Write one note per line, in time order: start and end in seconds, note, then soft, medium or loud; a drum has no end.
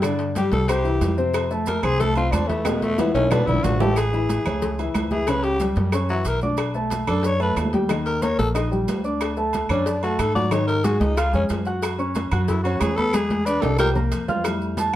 0.00 0.47 G2 medium
0.00 0.30 D3 medium
0.00 0.30 D4 medium
0.00 0.20 E4 medium
0.00 cowbell loud
0.00 high conga soft
0.00 low agogo loud
0.00 claves medium
0.00 maracas medium
0.04 0.31 D5 medium
0.19 cowbell medium
0.19 high conga soft
0.19 maracas soft
0.35 0.63 G3 medium
0.35 0.64 G4 medium
0.35 0.52 G4 medium
0.35 0.64 G5 medium
0.35 cowbell medium
0.35 high conga loud
0.35 low agogo medium
0.35 maracas medium
0.51 0.98 C2 loud
0.51 0.70 A4 loud
0.51 cowbell medium
0.51 high conga medium
0.51 maracas soft
0.68 0.82 C3 loud
0.68 0.82 C4 medium
0.68 1.18 G4 medium
0.68 0.83 C5 loud
0.68 cowbell loud
0.68 low agogo loud
0.68 claves medium
0.68 maracas medium
0.84 1.12 E3 medium
0.84 1.12 E4 medium
0.84 1.12 E5 medium
0.84 high conga soft
0.84 maracas soft
1.01 1.78 F2 medium
1.01 cowbell medium
1.01 high conga soft
1.01 low timbale medium
1.01 low agogo medium
1.01 maracas medium
1.17 1.45 C3 medium
1.17 1.45 C4 loud
1.17 1.45 C5 medium
1.17 maracas soft
1.34 cowbell loud
1.34 high conga soft
1.34 low agogo loud
1.34 claves medium
1.34 maracas medium
1.51 1.78 A3 medium
1.51 1.78 A4 medium
1.51 1.78 A5 medium
1.51 high conga soft
1.51 maracas soft
1.66 1.85 A#4 medium
1.66 cowbell medium
1.66 high conga loud
1.66 low agogo medium
1.66 maracas medium
1.83 2.29 C2 loud
1.83 1.97 C4 medium
1.83 2.01 G#4 loud
1.83 1.97 C5 medium
1.83 1.97 C6 medium
1.83 high conga soft
1.83 low conga medium
1.83 low agogo loud
1.83 claves medium
1.83 maracas soft
2.00 2.14 A3 medium
2.00 2.16 A4 loud
2.00 2.14 A4 medium
2.00 2.14 A5 medium
2.00 cowbell loud
2.00 high conga soft
2.00 low conga medium
2.00 maracas medium
2.15 2.43 C4 medium
2.15 2.33 F4 loud
2.15 2.44 C5 medium
2.15 2.44 C6 medium
2.15 high conga soft
2.15 low agogo medium
2.15 maracas soft
2.32 3.09 E2 medium
2.32 2.49 D4 medium
2.32 cowbell medium
2.32 high conga medium
2.32 low timbale medium
2.32 low agogo loud
2.32 claves medium
2.32 maracas medium
2.48 2.62 E3 medium
2.48 2.68 A3 medium
2.48 2.63 E4 medium
2.48 2.63 E5 medium
2.48 cowbell medium
2.48 high conga loud
2.48 maracas soft
2.65 2.93 B2 medium
2.65 2.84 G#3 medium
2.65 2.93 B3 medium
2.65 2.93 B4 medium
2.65 cowbell loud
2.65 high conga medium
2.65 high timbale medium
2.65 low agogo loud
2.65 claves medium
2.65 maracas medium
2.82 3.01 A3 loud
2.82 cowbell medium
2.82 high conga medium
2.82 maracas soft
2.98 3.25 E3 medium
2.98 3.13 B3 medium
2.98 3.25 E4 medium
2.98 3.25 E5 medium
2.98 cowbell medium
2.98 high conga medium
2.98 low timbale medium
2.98 low agogo medium
2.98 maracas medium
3.14 3.45 B1 loud
3.14 3.32 C#4 loud
3.14 cowbell medium
3.14 high timbale medium
3.14 maracas soft
3.31 3.45 B2 loud
3.31 3.45 B3 loud
3.31 3.48 D4 medium
3.31 3.45 B4 loud
3.31 cowbell loud
3.31 low conga loud
3.31 low timbale medium
3.31 low agogo loud
3.31 claves medium
3.31 maracas medium
3.47 3.62 B1 medium
3.47 3.75 D3 medium
3.47 3.75 D4 medium
3.47 3.65 E4 loud
3.47 3.75 D5 medium
3.47 low conga medium
3.47 low timbale medium
3.47 maracas soft
3.63 4.40 A1 loud
3.63 3.82 F#4 medium
3.63 cowbell medium
3.63 low conga medium
3.63 low timbale medium
3.63 low agogo medium
3.63 maracas medium
3.80 3.94 A2 medium
3.80 3.94 A3 loud
3.80 3.99 G4 loud
3.80 3.94 A4 loud
3.80 low conga loud
3.80 low timbale loud
3.80 maracas soft
3.96 4.95 G#4 medium
3.96 cowbell loud
3.96 high conga soft
3.96 low agogo medium
3.96 claves medium
3.96 maracas medium
4.13 4.40 E3 medium
4.13 4.40 E4 medium
4.13 4.41 E5 medium
4.13 high conga soft
4.13 maracas soft
4.29 cowbell medium
4.29 high conga loud
4.29 low agogo medium
4.29 maracas medium
4.45 4.91 C#2 medium
4.45 4.73 A3 medium
4.45 4.73 C#5 medium
4.45 4.73 E5 medium
4.45 high conga soft
4.45 low conga medium
4.45 low agogo loud
4.45 claves medium
4.45 maracas soft
4.62 cowbell loud
4.62 high conga soft
4.62 low conga medium
4.62 maracas medium
4.79 5.06 E3 medium
4.79 5.06 E4 medium
4.79 5.06 E5 medium
4.79 high conga soft
4.79 low agogo medium
4.79 maracas soft
4.94 5.71 C#2 medium
4.94 cowbell medium
4.94 high conga medium
4.94 low timbale medium
4.94 low agogo loud
4.94 claves medium
4.94 maracas medium
5.10 5.25 E3 medium
5.10 5.25 E4 medium
5.10 5.30 G#4 medium
5.10 5.25 E5 medium
5.10 cowbell medium
5.10 high conga medium
5.10 maracas soft
5.27 5.55 C#3 medium
5.27 5.55 C#4 medium
5.27 5.45 B4 loud
5.27 5.55 C#5 medium
5.27 cowbell loud
5.27 high conga soft
5.27 low agogo loud
5.27 claves medium
5.27 maracas medium
5.44 5.60 G4 loud
5.44 cowbell medium
5.44 high conga soft
5.44 maracas soft
5.60 5.88 G3 medium
5.60 5.88 G4 medium
5.60 5.88 G5 medium
5.60 cowbell medium
5.60 high conga medium
5.60 low agogo medium
5.60 maracas medium
5.75 6.22 F#2 loud
5.75 cowbell medium
5.75 high conga loud
5.75 maracas soft
5.92 6.07 C#4 medium
5.92 6.07 C#5 medium
5.92 6.07 C#6 medium
5.92 cowbell loud
5.92 high conga soft
5.92 low agogo medium
5.92 claves medium
5.92 maracas medium
6.09 6.37 E3 medium
6.09 6.37 E4 medium
6.09 6.29 F#4 medium
6.09 6.37 E5 medium
6.09 high conga soft
6.09 maracas soft
6.25 7.02 B1 medium
6.25 6.42 A#4 loud
6.25 cowbell medium
6.25 high conga soft
6.25 low agogo medium
6.25 maracas medium
6.41 6.69 D4 medium
6.41 6.51 F#4 medium
6.41 6.70 D5 medium
6.41 6.70 D6 medium
6.41 high conga medium
6.41 maracas soft
6.57 cowbell loud
6.57 low agogo loud
6.57 claves medium
6.57 maracas medium
6.74 7.02 A3 medium
6.74 7.02 A4 medium
6.74 7.02 A5 medium
6.74 high conga soft
6.74 maracas soft
6.90 cowbell medium
6.90 high conga loud
6.90 low agogo medium
6.90 maracas medium
7.07 7.54 F#2 loud
7.07 7.35 D4 medium
7.07 7.27 A4 medium
7.07 7.35 D5 medium
7.07 7.35 D6 medium
7.07 high conga soft
7.07 low conga medium
7.07 low agogo loud
7.07 claves medium
7.07 maracas soft
7.23 7.41 C#5 loud
7.23 cowbell medium
7.23 high conga soft
7.23 maracas medium
7.40 7.67 A3 medium
7.40 7.67 A4 medium
7.40 7.57 B4 medium
7.40 7.67 A5 medium
7.40 high conga soft
7.40 low agogo medium
7.40 maracas soft
7.56 8.33 D#2 medium
7.56 cowbell medium
7.56 high conga medium
7.56 low timbale medium
7.56 low agogo medium
7.56 claves medium
7.56 maracas medium
7.73 7.87 G3 medium
7.73 7.87 G4 medium
7.73 7.87 G5 medium
7.73 cowbell medium
7.73 high conga medium
7.73 maracas soft
7.89 8.17 D#3 medium
7.89 8.17 D#4 medium
7.89 8.17 D#5 medium
7.89 cowbell loud
7.89 high conga soft
7.89 low agogo loud
7.89 claves medium
7.89 maracas medium
8.06 8.24 A#4 loud
8.06 cowbell medium
8.06 maracas soft
8.22 8.50 A#3 medium
8.22 8.50 A#4 medium
8.22 8.38 C#5 medium
8.22 8.50 A#5 medium
8.22 cowbell medium
8.22 high conga loud
8.22 low agogo medium
8.22 maracas medium
8.38 8.85 A#1 loud
8.38 8.49 A4 loud
8.38 cowbell medium
8.38 high conga loud
8.38 maracas soft
8.55 8.69 D#4 medium
8.55 8.69 D#5 medium
8.55 8.69 D#6 medium
8.55 cowbell loud
8.55 high conga soft
8.55 low agogo loud
8.55 claves medium
8.55 maracas medium
8.71 8.98 G3 medium
8.71 8.99 G4 medium
8.71 8.99 G5 medium
8.71 high conga soft
8.71 maracas soft
8.88 9.64 D2 medium
8.88 cowbell medium
8.88 high conga soft
8.88 low timbale medium
8.88 low agogo medium
8.88 maracas medium
9.04 9.31 D4 medium
9.04 9.32 D5 medium
9.04 9.32 D6 medium
9.04 maracas soft
9.21 cowbell loud
9.21 high conga soft
9.21 low agogo loud
9.21 claves medium
9.21 maracas medium
9.37 9.64 A3 medium
9.37 9.65 A4 medium
9.37 9.65 A5 medium
9.37 high conga soft
9.37 maracas soft
9.53 cowbell medium
9.53 high conga medium
9.53 low agogo medium
9.53 maracas medium
9.69 10.16 F#2 medium
9.69 9.89 C#4 medium
9.69 9.97 D4 medium
9.69 9.97 D5 medium
9.69 9.98 D6 medium
9.69 high conga soft
9.69 low conga medium
9.69 low agogo loud
9.69 claves medium
9.69 maracas soft
9.86 10.02 D4 medium
9.86 cowbell loud
9.86 high conga soft
9.86 maracas medium
10.03 10.30 A3 medium
10.03 10.21 F#4 medium
10.03 10.30 A4 medium
10.03 10.30 A5 medium
10.03 high conga soft
10.03 low agogo medium
10.03 maracas soft
10.19 10.95 G#2 medium
10.19 10.34 A4 medium
10.19 cowbell medium
10.19 high conga medium
10.19 low agogo loud
10.19 claves medium
10.19 maracas medium
10.35 10.49 F#3 medium
10.35 10.49 F#4 medium
10.35 10.54 D5 loud
10.35 10.49 F#5 medium
10.35 cowbell medium
10.35 high conga loud
10.35 maracas soft
10.51 10.79 D#3 medium
10.51 10.79 D#4 medium
10.51 10.67 C#5 loud
10.51 10.79 D#5 medium
10.51 cowbell loud
10.51 low agogo medium
10.51 claves medium
10.51 maracas medium
10.67 10.86 A#4 loud
10.67 cowbell medium
10.67 high conga soft
10.67 maracas soft
10.84 11.11 G#3 medium
10.84 11.00 F#4 medium
10.84 11.11 G#4 medium
10.84 11.12 G#5 medium
10.84 cowbell medium
10.84 high conga loud
10.84 low agogo medium
10.84 maracas medium
11.00 11.31 C#2 loud
11.00 11.19 D#4 medium
11.00 cowbell medium
11.00 high conga loud
11.00 maracas soft
11.17 11.31 F4 medium
11.17 11.34 F4 loud
11.17 11.31 F5 medium
11.17 11.31 F6 medium
11.17 cowbell loud
11.17 high conga soft
11.17 low agogo loud
11.17 claves medium
11.17 maracas medium
11.33 11.49 F2 medium
11.33 11.60 G#3 medium
11.33 11.44 C#4 medium
11.33 11.60 G#4 medium
11.33 11.61 G#5 medium
11.33 high conga soft
11.33 maracas soft
11.49 12.27 F#2 medium
11.49 cowbell medium
11.49 high conga soft
11.49 low timbale medium
11.49 low agogo medium
11.49 maracas medium
11.65 11.94 F#4 medium
11.65 11.94 F#5 medium
11.65 11.94 F#6 medium
11.65 maracas soft
11.82 cowbell loud
11.82 high conga soft
11.82 low agogo loud
11.82 claves medium
11.82 maracas medium
11.98 12.26 C#4 medium
11.98 12.26 C#5 medium
11.98 12.26 C#6 medium
11.98 high conga soft
11.98 maracas soft
12.15 cowbell medium
12.15 high conga loud
12.15 low agogo medium
12.15 maracas medium
12.32 12.78 F#2 loud
12.32 12.59 F#4 medium
12.32 12.59 F#5 medium
12.32 12.59 F#6 medium
12.32 high conga soft
12.32 low conga loud
12.32 low agogo loud
12.32 claves medium
12.32 maracas soft
12.48 12.63 E4 medium
12.48 cowbell loud
12.48 high conga soft
12.48 low conga medium
12.48 maracas medium
12.64 12.92 C#4 medium
12.64 12.81 F#4 medium
12.64 12.92 C#5 medium
12.64 12.92 C#6 medium
12.64 high conga soft
12.64 low agogo medium
12.64 maracas soft
12.80 13.57 E2 medium
12.80 12.97 G#4 loud
12.80 cowbell medium
12.80 high conga medium
12.80 low timbale medium
12.80 low agogo loud
12.80 claves medium
12.80 maracas medium
12.96 13.11 B3 medium
12.96 13.15 A4 loud
12.96 13.11 B4 medium
12.96 13.11 B5 medium
12.96 cowbell medium
12.96 high conga loud
12.96 maracas soft
13.13 13.40 G#3 medium
13.13 13.41 G#4 medium
13.13 13.47 G#4 loud
13.13 13.41 G#5 medium
13.13 cowbell loud
13.13 high conga medium
13.13 low agogo loud
13.13 claves medium
13.13 maracas medium
13.30 cowbell medium
13.30 high conga loud
13.30 maracas soft
13.45 13.73 D4 medium
13.45 13.63 B4 loud
13.45 13.73 D5 medium
13.45 13.73 D6 medium
13.45 cowbell medium
13.45 low agogo medium
13.45 maracas medium
13.62 14.09 C2 loud
13.62 13.79 A4 medium
13.62 cowbell medium
13.62 low conga loud
13.62 high timbale medium
13.62 maracas soft
13.78 13.93 G4 medium
13.78 13.89 A#4 loud
13.78 13.93 G5 medium
13.78 13.93 G6 medium
13.78 cowbell loud
13.78 low timbale medium
13.78 low agogo loud
13.78 claves medium
13.78 maracas medium
13.95 14.22 A#3 medium
13.95 14.23 A#4 medium
13.95 14.23 A#5 medium
13.95 low conga medium
13.95 maracas soft
14.12 14.88 F2 medium
14.12 cowbell medium
14.12 low agogo medium
14.12 maracas medium
14.28 14.42 F4 medium
14.28 14.42 F5 medium
14.28 14.42 F6 medium
14.28 low conga loud
14.28 low timbale medium
14.28 maracas soft
14.44 14.96 G3 medium
14.44 14.96 A3 soft
14.44 14.96 E4 medium
14.44 cowbell loud
14.44 high conga soft
14.44 low agogo loud
14.44 claves medium
14.44 maracas medium
14.61 high conga soft
14.61 maracas soft
14.77 14.94 A5 loud
14.77 cowbell medium
14.77 high conga loud
14.77 low agogo medium
14.77 maracas medium